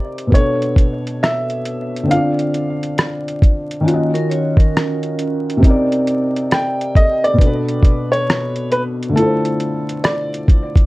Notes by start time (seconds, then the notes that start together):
Already playing: C3 C4 D#4 A#4 C5 D5
0.18 closed hi-hat
0.27 B2 B3
0.32 D4 C#5, kick, closed hi-hat
0.37 A4 C#5
0.62 closed hi-hat
0.76 kick, closed hi-hat
1.07 closed hi-hat
1.23 E5, cross-stick, closed hi-hat
1.50 closed hi-hat
1.65 closed hi-hat
1.96 closed hi-hat
2.03 D3 C4
2.10 D4 F4 F5, closed hi-hat
2.16 D5
2.39 closed hi-hat
2.54 closed hi-hat
2.83 closed hi-hat
2.98 cross-stick, closed hi-hat
3.28 closed hi-hat
3.42 kick, closed hi-hat
3.71 closed hi-hat
3.81 D#3 C#4
3.85 A#3 F4 F#4, closed hi-hat
3.90 F#4 D#5
4.14 C#4 A#4, closed hi-hat
4.30 F4 C#5, closed hi-hat
4.57 C#4 A#4, kick, closed hi-hat
4.77 cross-stick, closed hi-hat
5.03 closed hi-hat
5.19 closed hi-hat
5.50 closed hi-hat
5.57 C3 C4
5.63 D#4, kick, closed hi-hat
5.67 A#4 D5
5.92 closed hi-hat
6.07 closed hi-hat
6.36 closed hi-hat
6.51 G5, cross-stick, closed hi-hat
6.81 closed hi-hat
6.95 D#5, kick, closed hi-hat
7.24 D5, closed hi-hat
7.33 B2 B3
7.39 D4, kick, closed hi-hat
7.43 A4 B4
7.69 closed hi-hat
7.83 kick, closed hi-hat
8.12 C#5, closed hi-hat
8.30 cross-stick, closed hi-hat
8.56 closed hi-hat
8.72 B4, closed hi-hat
9.03 closed hi-hat
9.09 D3 A3
9.16 E4 F4 A4, closed hi-hat
9.22 C5
9.45 closed hi-hat
9.60 closed hi-hat
9.89 closed hi-hat
10.04 D5, cross-stick, closed hi-hat
10.34 closed hi-hat
10.48 kick, closed hi-hat
10.76 kick, closed hi-hat